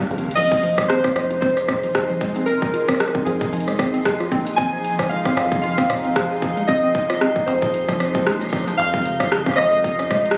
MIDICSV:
0, 0, Header, 1, 7, 480
1, 0, Start_track
1, 0, Key_signature, -4, "minor"
1, 0, Tempo, 526316
1, 337, Time_signature, 4, 2, 24, 8
1, 9463, End_track
2, 0, Start_track
2, 0, Title_t, "Synth keys"
2, 0, Program_c, 0, 88
2, 323, Note_on_c, 0, 75, 123
2, 805, Note_on_c, 0, 72, 106
2, 825, Note_off_c, 0, 75, 0
2, 1273, Note_off_c, 0, 72, 0
2, 1284, Note_on_c, 0, 72, 93
2, 2243, Note_on_c, 0, 70, 105
2, 2280, Note_off_c, 0, 72, 0
2, 2964, Note_on_c, 0, 68, 83
2, 2992, Note_off_c, 0, 70, 0
2, 3895, Note_off_c, 0, 68, 0
2, 4162, Note_on_c, 0, 80, 124
2, 4644, Note_on_c, 0, 77, 104
2, 4665, Note_off_c, 0, 80, 0
2, 5113, Note_off_c, 0, 77, 0
2, 5124, Note_on_c, 0, 77, 99
2, 6087, Note_on_c, 0, 75, 110
2, 6120, Note_off_c, 0, 77, 0
2, 6805, Note_on_c, 0, 72, 78
2, 6834, Note_off_c, 0, 75, 0
2, 7735, Note_off_c, 0, 72, 0
2, 8002, Note_on_c, 0, 77, 126
2, 8694, Note_off_c, 0, 77, 0
2, 8723, Note_on_c, 0, 75, 101
2, 9463, Note_off_c, 0, 75, 0
2, 9463, End_track
3, 0, Start_track
3, 0, Title_t, "Synth texture"
3, 0, Program_c, 1, 99
3, 0, Note_on_c, 1, 65, 79
3, 0, Note_on_c, 1, 77, 84
3, 338, Note_on_c, 1, 84, 87
3, 339, Note_on_c, 1, 63, 84
3, 349, Note_off_c, 1, 65, 0
3, 349, Note_off_c, 1, 77, 0
3, 9463, Note_off_c, 1, 63, 0
3, 9463, Note_off_c, 1, 84, 0
3, 9463, End_track
4, 0, Start_track
4, 0, Title_t, "Synth arpeggio sound"
4, 0, Program_c, 2, 84
4, 98, Note_on_c, 2, 49, 99
4, 182, Note_off_c, 2, 49, 0
4, 337, Note_on_c, 2, 53, 87
4, 422, Note_off_c, 2, 53, 0
4, 577, Note_on_c, 2, 53, 107
4, 628, Note_off_c, 2, 53, 0
4, 712, Note_on_c, 2, 56, 78
4, 811, Note_off_c, 2, 56, 0
4, 817, Note_on_c, 2, 60, 83
4, 868, Note_off_c, 2, 60, 0
4, 951, Note_on_c, 2, 60, 79
4, 1018, Note_off_c, 2, 60, 0
4, 1190, Note_on_c, 2, 65, 81
4, 1231, Note_off_c, 2, 65, 0
4, 1296, Note_on_c, 2, 60, 102
4, 1348, Note_off_c, 2, 60, 0
4, 1536, Note_on_c, 2, 60, 80
4, 1587, Note_off_c, 2, 60, 0
4, 1672, Note_on_c, 2, 53, 76
4, 1738, Note_off_c, 2, 53, 0
4, 1911, Note_on_c, 2, 53, 99
4, 1951, Note_off_c, 2, 53, 0
4, 2017, Note_on_c, 2, 56, 77
4, 2144, Note_off_c, 2, 56, 0
4, 2151, Note_on_c, 2, 60, 80
4, 2192, Note_off_c, 2, 60, 0
4, 2257, Note_on_c, 2, 60, 81
4, 2342, Note_off_c, 2, 60, 0
4, 2496, Note_on_c, 2, 65, 74
4, 2547, Note_off_c, 2, 65, 0
4, 2630, Note_on_c, 2, 60, 102
4, 2671, Note_off_c, 2, 60, 0
4, 2871, Note_on_c, 2, 60, 81
4, 2912, Note_off_c, 2, 60, 0
4, 2977, Note_on_c, 2, 53, 80
4, 3061, Note_off_c, 2, 53, 0
4, 3217, Note_on_c, 2, 53, 96
4, 3268, Note_off_c, 2, 53, 0
4, 3351, Note_on_c, 2, 56, 81
4, 3451, Note_off_c, 2, 56, 0
4, 3456, Note_on_c, 2, 60, 77
4, 3507, Note_off_c, 2, 60, 0
4, 3590, Note_on_c, 2, 60, 79
4, 3658, Note_off_c, 2, 60, 0
4, 3830, Note_on_c, 2, 65, 74
4, 3871, Note_off_c, 2, 65, 0
4, 3936, Note_on_c, 2, 60, 105
4, 3987, Note_off_c, 2, 60, 0
4, 4177, Note_on_c, 2, 60, 84
4, 4228, Note_off_c, 2, 60, 0
4, 4311, Note_on_c, 2, 53, 73
4, 4378, Note_off_c, 2, 53, 0
4, 4551, Note_on_c, 2, 53, 107
4, 4591, Note_off_c, 2, 53, 0
4, 4657, Note_on_c, 2, 56, 82
4, 4784, Note_off_c, 2, 56, 0
4, 4791, Note_on_c, 2, 60, 77
4, 4832, Note_off_c, 2, 60, 0
4, 4897, Note_on_c, 2, 60, 80
4, 4982, Note_off_c, 2, 60, 0
4, 5137, Note_on_c, 2, 65, 82
4, 5188, Note_off_c, 2, 65, 0
4, 5271, Note_on_c, 2, 60, 103
4, 5312, Note_off_c, 2, 60, 0
4, 5513, Note_on_c, 2, 60, 79
4, 5552, Note_off_c, 2, 60, 0
4, 5617, Note_on_c, 2, 53, 84
4, 5702, Note_off_c, 2, 53, 0
4, 5857, Note_on_c, 2, 53, 102
4, 5908, Note_off_c, 2, 53, 0
4, 5992, Note_on_c, 2, 56, 80
4, 6092, Note_off_c, 2, 56, 0
4, 6097, Note_on_c, 2, 60, 88
4, 6148, Note_off_c, 2, 60, 0
4, 6232, Note_on_c, 2, 60, 73
4, 6298, Note_off_c, 2, 60, 0
4, 6471, Note_on_c, 2, 65, 79
4, 6511, Note_off_c, 2, 65, 0
4, 6577, Note_on_c, 2, 60, 101
4, 6628, Note_off_c, 2, 60, 0
4, 6816, Note_on_c, 2, 60, 76
4, 6868, Note_off_c, 2, 60, 0
4, 6951, Note_on_c, 2, 53, 77
4, 7018, Note_off_c, 2, 53, 0
4, 7192, Note_on_c, 2, 53, 102
4, 7232, Note_off_c, 2, 53, 0
4, 7432, Note_on_c, 2, 53, 80
4, 7498, Note_off_c, 2, 53, 0
4, 7536, Note_on_c, 2, 56, 82
4, 7664, Note_off_c, 2, 56, 0
4, 7778, Note_on_c, 2, 53, 78
4, 7862, Note_off_c, 2, 53, 0
4, 7911, Note_on_c, 2, 53, 108
4, 7978, Note_off_c, 2, 53, 0
4, 8152, Note_on_c, 2, 56, 74
4, 8192, Note_off_c, 2, 56, 0
4, 8257, Note_on_c, 2, 49, 78
4, 8342, Note_off_c, 2, 49, 0
4, 8497, Note_on_c, 2, 49, 104
4, 8548, Note_off_c, 2, 49, 0
4, 8631, Note_on_c, 2, 61, 75
4, 8671, Note_off_c, 2, 61, 0
4, 8737, Note_on_c, 2, 56, 79
4, 8788, Note_off_c, 2, 56, 0
4, 8872, Note_on_c, 2, 56, 81
4, 8938, Note_off_c, 2, 56, 0
4, 9111, Note_on_c, 2, 61, 78
4, 9152, Note_off_c, 2, 61, 0
4, 9217, Note_on_c, 2, 56, 100
4, 9268, Note_off_c, 2, 56, 0
4, 9463, End_track
5, 0, Start_track
5, 0, Title_t, "Ambient pad"
5, 0, Program_c, 3, 92
5, 0, Note_on_c, 3, 51, 77
5, 0, Note_on_c, 3, 58, 71
5, 0, Note_on_c, 3, 61, 71
5, 0, Note_on_c, 3, 67, 86
5, 302, Note_off_c, 3, 51, 0
5, 302, Note_off_c, 3, 58, 0
5, 302, Note_off_c, 3, 61, 0
5, 303, Note_off_c, 3, 67, 0
5, 335, Note_on_c, 3, 48, 70
5, 335, Note_on_c, 3, 53, 77
5, 335, Note_on_c, 3, 68, 84
5, 336, Note_on_c, 3, 63, 71
5, 7980, Note_off_c, 3, 53, 0
5, 7980, Note_off_c, 3, 63, 0
5, 7980, Note_off_c, 3, 68, 0
5, 8018, Note_on_c, 3, 49, 80
5, 8018, Note_on_c, 3, 53, 73
5, 9463, Note_off_c, 3, 48, 0
5, 9463, Note_off_c, 3, 49, 0
5, 9463, Note_off_c, 3, 53, 0
5, 9463, End_track
6, 0, Start_track
6, 0, Title_t, "Acid bass"
6, 0, Program_c, 4, 38
6, 96, Note_on_c, 4, 29, 95
6, 254, Note_off_c, 4, 29, 0
6, 337, Note_on_c, 4, 29, 96
6, 990, Note_off_c, 4, 29, 0
6, 1055, Note_on_c, 4, 29, 102
6, 2430, Note_off_c, 4, 29, 0
6, 2977, Note_on_c, 4, 29, 104
6, 3938, Note_on_c, 4, 34, 97
6, 3951, Note_off_c, 4, 29, 0
6, 4831, Note_off_c, 4, 34, 0
6, 4898, Note_on_c, 4, 29, 106
6, 6271, Note_off_c, 4, 29, 0
6, 6818, Note_on_c, 4, 29, 106
6, 7538, Note_on_c, 4, 34, 94
6, 7552, Note_off_c, 4, 29, 0
6, 7912, Note_on_c, 4, 27, 86
6, 7926, Note_off_c, 4, 34, 0
6, 7976, Note_off_c, 4, 27, 0
6, 8017, Note_on_c, 4, 29, 98
6, 8671, Note_off_c, 4, 29, 0
6, 8738, Note_on_c, 4, 29, 104
6, 9463, Note_off_c, 4, 29, 0
6, 9463, End_track
7, 0, Start_track
7, 0, Title_t, "Drums"
7, 97, Note_on_c, 9, 42, 55
7, 164, Note_off_c, 9, 42, 0
7, 164, Note_on_c, 9, 42, 62
7, 255, Note_off_c, 9, 42, 0
7, 284, Note_on_c, 9, 42, 80
7, 336, Note_off_c, 9, 42, 0
7, 336, Note_on_c, 9, 42, 87
7, 336, Note_on_c, 9, 49, 101
7, 428, Note_off_c, 9, 42, 0
7, 428, Note_off_c, 9, 49, 0
7, 471, Note_on_c, 9, 36, 101
7, 562, Note_off_c, 9, 36, 0
7, 576, Note_on_c, 9, 42, 81
7, 667, Note_off_c, 9, 42, 0
7, 711, Note_on_c, 9, 36, 116
7, 712, Note_on_c, 9, 37, 81
7, 712, Note_on_c, 9, 42, 53
7, 802, Note_off_c, 9, 36, 0
7, 803, Note_off_c, 9, 37, 0
7, 803, Note_off_c, 9, 42, 0
7, 817, Note_on_c, 9, 37, 121
7, 817, Note_on_c, 9, 42, 81
7, 909, Note_off_c, 9, 37, 0
7, 909, Note_off_c, 9, 42, 0
7, 951, Note_on_c, 9, 36, 103
7, 952, Note_on_c, 9, 37, 64
7, 952, Note_on_c, 9, 42, 38
7, 1042, Note_off_c, 9, 36, 0
7, 1043, Note_off_c, 9, 37, 0
7, 1043, Note_off_c, 9, 42, 0
7, 1057, Note_on_c, 9, 37, 83
7, 1057, Note_on_c, 9, 42, 83
7, 1148, Note_off_c, 9, 37, 0
7, 1148, Note_off_c, 9, 42, 0
7, 1192, Note_on_c, 9, 42, 56
7, 1283, Note_off_c, 9, 42, 0
7, 1296, Note_on_c, 9, 36, 113
7, 1296, Note_on_c, 9, 42, 77
7, 1388, Note_off_c, 9, 36, 0
7, 1388, Note_off_c, 9, 42, 0
7, 1432, Note_on_c, 9, 37, 54
7, 1432, Note_on_c, 9, 42, 37
7, 1432, Note_on_c, 9, 82, 75
7, 1523, Note_off_c, 9, 37, 0
7, 1523, Note_off_c, 9, 42, 0
7, 1523, Note_off_c, 9, 82, 0
7, 1537, Note_on_c, 9, 36, 102
7, 1537, Note_on_c, 9, 37, 83
7, 1537, Note_on_c, 9, 42, 79
7, 1537, Note_on_c, 9, 45, 93
7, 1628, Note_off_c, 9, 36, 0
7, 1628, Note_off_c, 9, 37, 0
7, 1628, Note_off_c, 9, 42, 0
7, 1628, Note_off_c, 9, 45, 0
7, 1672, Note_on_c, 9, 42, 58
7, 1763, Note_off_c, 9, 42, 0
7, 1777, Note_on_c, 9, 36, 114
7, 1777, Note_on_c, 9, 37, 120
7, 1777, Note_on_c, 9, 42, 84
7, 1868, Note_off_c, 9, 36, 0
7, 1868, Note_off_c, 9, 37, 0
7, 1868, Note_off_c, 9, 42, 0
7, 1912, Note_on_c, 9, 42, 37
7, 2003, Note_off_c, 9, 42, 0
7, 2017, Note_on_c, 9, 36, 101
7, 2017, Note_on_c, 9, 42, 79
7, 2108, Note_off_c, 9, 36, 0
7, 2108, Note_off_c, 9, 42, 0
7, 2152, Note_on_c, 9, 42, 57
7, 2243, Note_off_c, 9, 42, 0
7, 2257, Note_on_c, 9, 42, 83
7, 2349, Note_off_c, 9, 42, 0
7, 2391, Note_on_c, 9, 36, 122
7, 2482, Note_off_c, 9, 36, 0
7, 2497, Note_on_c, 9, 42, 80
7, 2589, Note_off_c, 9, 42, 0
7, 2631, Note_on_c, 9, 36, 103
7, 2632, Note_on_c, 9, 37, 76
7, 2632, Note_on_c, 9, 42, 58
7, 2685, Note_off_c, 9, 37, 0
7, 2685, Note_on_c, 9, 37, 61
7, 2722, Note_off_c, 9, 36, 0
7, 2723, Note_off_c, 9, 42, 0
7, 2738, Note_off_c, 9, 37, 0
7, 2738, Note_on_c, 9, 37, 125
7, 2738, Note_on_c, 9, 42, 84
7, 2805, Note_off_c, 9, 37, 0
7, 2805, Note_on_c, 9, 37, 42
7, 2829, Note_off_c, 9, 42, 0
7, 2871, Note_on_c, 9, 36, 125
7, 2873, Note_on_c, 9, 42, 38
7, 2896, Note_off_c, 9, 37, 0
7, 2962, Note_off_c, 9, 36, 0
7, 2964, Note_off_c, 9, 42, 0
7, 2978, Note_on_c, 9, 42, 87
7, 3069, Note_off_c, 9, 42, 0
7, 3111, Note_on_c, 9, 36, 110
7, 3113, Note_on_c, 9, 42, 57
7, 3113, Note_on_c, 9, 45, 84
7, 3202, Note_off_c, 9, 36, 0
7, 3204, Note_off_c, 9, 42, 0
7, 3204, Note_off_c, 9, 45, 0
7, 3219, Note_on_c, 9, 42, 81
7, 3253, Note_off_c, 9, 42, 0
7, 3253, Note_on_c, 9, 42, 61
7, 3286, Note_off_c, 9, 42, 0
7, 3286, Note_on_c, 9, 42, 51
7, 3320, Note_off_c, 9, 42, 0
7, 3320, Note_on_c, 9, 42, 43
7, 3354, Note_off_c, 9, 42, 0
7, 3354, Note_on_c, 9, 37, 54
7, 3354, Note_on_c, 9, 42, 38
7, 3354, Note_on_c, 9, 82, 76
7, 3380, Note_off_c, 9, 42, 0
7, 3380, Note_on_c, 9, 42, 29
7, 3406, Note_off_c, 9, 42, 0
7, 3406, Note_on_c, 9, 42, 25
7, 3433, Note_off_c, 9, 42, 0
7, 3433, Note_on_c, 9, 42, 19
7, 3445, Note_off_c, 9, 37, 0
7, 3445, Note_off_c, 9, 82, 0
7, 3457, Note_on_c, 9, 36, 121
7, 3460, Note_off_c, 9, 42, 0
7, 3460, Note_on_c, 9, 37, 82
7, 3460, Note_on_c, 9, 42, 83
7, 3548, Note_off_c, 9, 36, 0
7, 3551, Note_off_c, 9, 37, 0
7, 3551, Note_off_c, 9, 42, 0
7, 3593, Note_on_c, 9, 42, 59
7, 3685, Note_off_c, 9, 42, 0
7, 3697, Note_on_c, 9, 36, 108
7, 3699, Note_on_c, 9, 37, 127
7, 3699, Note_on_c, 9, 42, 86
7, 3788, Note_off_c, 9, 36, 0
7, 3790, Note_off_c, 9, 37, 0
7, 3790, Note_off_c, 9, 42, 0
7, 3834, Note_on_c, 9, 37, 37
7, 3834, Note_on_c, 9, 42, 38
7, 3925, Note_off_c, 9, 37, 0
7, 3925, Note_off_c, 9, 42, 0
7, 3937, Note_on_c, 9, 36, 114
7, 3938, Note_on_c, 9, 42, 81
7, 4028, Note_off_c, 9, 36, 0
7, 4030, Note_off_c, 9, 42, 0
7, 4073, Note_on_c, 9, 42, 54
7, 4073, Note_on_c, 9, 82, 75
7, 4165, Note_off_c, 9, 42, 0
7, 4165, Note_off_c, 9, 82, 0
7, 4178, Note_on_c, 9, 36, 117
7, 4178, Note_on_c, 9, 42, 80
7, 4269, Note_off_c, 9, 36, 0
7, 4269, Note_off_c, 9, 42, 0
7, 4419, Note_on_c, 9, 42, 83
7, 4510, Note_off_c, 9, 42, 0
7, 4552, Note_on_c, 9, 36, 122
7, 4553, Note_on_c, 9, 37, 75
7, 4553, Note_on_c, 9, 42, 52
7, 4643, Note_off_c, 9, 36, 0
7, 4644, Note_off_c, 9, 37, 0
7, 4644, Note_off_c, 9, 42, 0
7, 4659, Note_on_c, 9, 42, 82
7, 4750, Note_off_c, 9, 42, 0
7, 4792, Note_on_c, 9, 36, 112
7, 4793, Note_on_c, 9, 37, 60
7, 4793, Note_on_c, 9, 42, 38
7, 4883, Note_off_c, 9, 36, 0
7, 4884, Note_off_c, 9, 37, 0
7, 4884, Note_off_c, 9, 42, 0
7, 4898, Note_on_c, 9, 37, 81
7, 4898, Note_on_c, 9, 42, 86
7, 4989, Note_off_c, 9, 37, 0
7, 4989, Note_off_c, 9, 42, 0
7, 5032, Note_on_c, 9, 36, 126
7, 5033, Note_on_c, 9, 42, 54
7, 5123, Note_off_c, 9, 36, 0
7, 5125, Note_off_c, 9, 42, 0
7, 5139, Note_on_c, 9, 42, 77
7, 5230, Note_off_c, 9, 42, 0
7, 5272, Note_on_c, 9, 36, 111
7, 5274, Note_on_c, 9, 37, 50
7, 5274, Note_on_c, 9, 42, 37
7, 5274, Note_on_c, 9, 82, 79
7, 5363, Note_off_c, 9, 36, 0
7, 5365, Note_off_c, 9, 37, 0
7, 5365, Note_off_c, 9, 42, 0
7, 5365, Note_off_c, 9, 82, 0
7, 5379, Note_on_c, 9, 37, 76
7, 5379, Note_on_c, 9, 42, 80
7, 5379, Note_on_c, 9, 45, 89
7, 5470, Note_off_c, 9, 37, 0
7, 5470, Note_off_c, 9, 42, 0
7, 5470, Note_off_c, 9, 45, 0
7, 5513, Note_on_c, 9, 42, 55
7, 5605, Note_off_c, 9, 42, 0
7, 5617, Note_on_c, 9, 36, 125
7, 5619, Note_on_c, 9, 37, 124
7, 5619, Note_on_c, 9, 42, 85
7, 5709, Note_off_c, 9, 36, 0
7, 5710, Note_off_c, 9, 37, 0
7, 5710, Note_off_c, 9, 42, 0
7, 5753, Note_on_c, 9, 42, 37
7, 5844, Note_off_c, 9, 42, 0
7, 5858, Note_on_c, 9, 36, 113
7, 5858, Note_on_c, 9, 42, 79
7, 5949, Note_off_c, 9, 36, 0
7, 5949, Note_off_c, 9, 42, 0
7, 5993, Note_on_c, 9, 42, 53
7, 6084, Note_off_c, 9, 42, 0
7, 6097, Note_on_c, 9, 36, 127
7, 6098, Note_on_c, 9, 42, 83
7, 6189, Note_off_c, 9, 36, 0
7, 6189, Note_off_c, 9, 42, 0
7, 6337, Note_on_c, 9, 36, 110
7, 6428, Note_off_c, 9, 36, 0
7, 6473, Note_on_c, 9, 37, 75
7, 6473, Note_on_c, 9, 42, 53
7, 6564, Note_off_c, 9, 37, 0
7, 6564, Note_off_c, 9, 42, 0
7, 6578, Note_on_c, 9, 37, 124
7, 6578, Note_on_c, 9, 42, 76
7, 6669, Note_off_c, 9, 37, 0
7, 6669, Note_off_c, 9, 42, 0
7, 6712, Note_on_c, 9, 36, 123
7, 6713, Note_on_c, 9, 42, 38
7, 6803, Note_off_c, 9, 36, 0
7, 6804, Note_off_c, 9, 42, 0
7, 6818, Note_on_c, 9, 42, 77
7, 6910, Note_off_c, 9, 42, 0
7, 6952, Note_on_c, 9, 36, 108
7, 6953, Note_on_c, 9, 42, 52
7, 6953, Note_on_c, 9, 45, 82
7, 7043, Note_off_c, 9, 36, 0
7, 7044, Note_off_c, 9, 42, 0
7, 7044, Note_off_c, 9, 45, 0
7, 7058, Note_on_c, 9, 42, 77
7, 7149, Note_off_c, 9, 42, 0
7, 7192, Note_on_c, 9, 36, 127
7, 7193, Note_on_c, 9, 37, 49
7, 7193, Note_on_c, 9, 42, 35
7, 7193, Note_on_c, 9, 82, 84
7, 7283, Note_off_c, 9, 36, 0
7, 7284, Note_off_c, 9, 37, 0
7, 7284, Note_off_c, 9, 42, 0
7, 7284, Note_off_c, 9, 82, 0
7, 7298, Note_on_c, 9, 37, 76
7, 7298, Note_on_c, 9, 42, 77
7, 7389, Note_off_c, 9, 37, 0
7, 7389, Note_off_c, 9, 42, 0
7, 7432, Note_on_c, 9, 36, 111
7, 7433, Note_on_c, 9, 42, 53
7, 7523, Note_off_c, 9, 36, 0
7, 7524, Note_off_c, 9, 42, 0
7, 7538, Note_on_c, 9, 37, 125
7, 7538, Note_on_c, 9, 42, 77
7, 7606, Note_off_c, 9, 42, 0
7, 7606, Note_on_c, 9, 42, 37
7, 7630, Note_off_c, 9, 37, 0
7, 7673, Note_on_c, 9, 37, 15
7, 7673, Note_on_c, 9, 82, 78
7, 7697, Note_off_c, 9, 42, 0
7, 7699, Note_off_c, 9, 37, 0
7, 7699, Note_on_c, 9, 37, 18
7, 7726, Note_off_c, 9, 37, 0
7, 7726, Note_on_c, 9, 37, 20
7, 7744, Note_off_c, 9, 82, 0
7, 7744, Note_on_c, 9, 82, 63
7, 7753, Note_off_c, 9, 37, 0
7, 7753, Note_on_c, 9, 37, 21
7, 7777, Note_on_c, 9, 36, 126
7, 7779, Note_off_c, 9, 37, 0
7, 7779, Note_on_c, 9, 37, 25
7, 7779, Note_on_c, 9, 42, 79
7, 7812, Note_off_c, 9, 37, 0
7, 7812, Note_on_c, 9, 37, 26
7, 7824, Note_off_c, 9, 82, 0
7, 7824, Note_on_c, 9, 82, 49
7, 7847, Note_off_c, 9, 37, 0
7, 7847, Note_on_c, 9, 37, 29
7, 7868, Note_off_c, 9, 36, 0
7, 7871, Note_off_c, 9, 42, 0
7, 7880, Note_off_c, 9, 37, 0
7, 7880, Note_on_c, 9, 37, 30
7, 7913, Note_off_c, 9, 82, 0
7, 7913, Note_on_c, 9, 42, 52
7, 7913, Note_on_c, 9, 82, 77
7, 7972, Note_off_c, 9, 37, 0
7, 8004, Note_off_c, 9, 42, 0
7, 8004, Note_off_c, 9, 82, 0
7, 8018, Note_on_c, 9, 42, 76
7, 8110, Note_off_c, 9, 42, 0
7, 8151, Note_on_c, 9, 36, 103
7, 8242, Note_off_c, 9, 36, 0
7, 8258, Note_on_c, 9, 42, 77
7, 8349, Note_off_c, 9, 42, 0
7, 8391, Note_on_c, 9, 36, 121
7, 8393, Note_on_c, 9, 37, 75
7, 8393, Note_on_c, 9, 42, 51
7, 8483, Note_off_c, 9, 36, 0
7, 8484, Note_off_c, 9, 37, 0
7, 8484, Note_off_c, 9, 42, 0
7, 8499, Note_on_c, 9, 37, 124
7, 8499, Note_on_c, 9, 42, 79
7, 8590, Note_off_c, 9, 37, 0
7, 8590, Note_off_c, 9, 42, 0
7, 8631, Note_on_c, 9, 36, 104
7, 8633, Note_on_c, 9, 37, 27
7, 8633, Note_on_c, 9, 42, 34
7, 8654, Note_off_c, 9, 37, 0
7, 8654, Note_on_c, 9, 37, 32
7, 8675, Note_off_c, 9, 37, 0
7, 8675, Note_on_c, 9, 37, 38
7, 8696, Note_off_c, 9, 37, 0
7, 8696, Note_on_c, 9, 37, 45
7, 8718, Note_off_c, 9, 37, 0
7, 8718, Note_on_c, 9, 37, 51
7, 8722, Note_off_c, 9, 36, 0
7, 8725, Note_off_c, 9, 42, 0
7, 8739, Note_off_c, 9, 37, 0
7, 8739, Note_on_c, 9, 37, 74
7, 8830, Note_off_c, 9, 37, 0
7, 8873, Note_on_c, 9, 42, 53
7, 8964, Note_off_c, 9, 42, 0
7, 8977, Note_on_c, 9, 36, 118
7, 8978, Note_on_c, 9, 42, 74
7, 9068, Note_off_c, 9, 36, 0
7, 9069, Note_off_c, 9, 42, 0
7, 9113, Note_on_c, 9, 37, 50
7, 9113, Note_on_c, 9, 42, 34
7, 9113, Note_on_c, 9, 82, 83
7, 9204, Note_off_c, 9, 37, 0
7, 9204, Note_off_c, 9, 42, 0
7, 9204, Note_off_c, 9, 82, 0
7, 9217, Note_on_c, 9, 36, 106
7, 9218, Note_on_c, 9, 37, 77
7, 9218, Note_on_c, 9, 42, 76
7, 9218, Note_on_c, 9, 45, 94
7, 9308, Note_off_c, 9, 36, 0
7, 9309, Note_off_c, 9, 37, 0
7, 9309, Note_off_c, 9, 42, 0
7, 9309, Note_off_c, 9, 45, 0
7, 9353, Note_on_c, 9, 42, 53
7, 9405, Note_on_c, 9, 37, 120
7, 9444, Note_off_c, 9, 42, 0
7, 9463, Note_off_c, 9, 37, 0
7, 9463, End_track
0, 0, End_of_file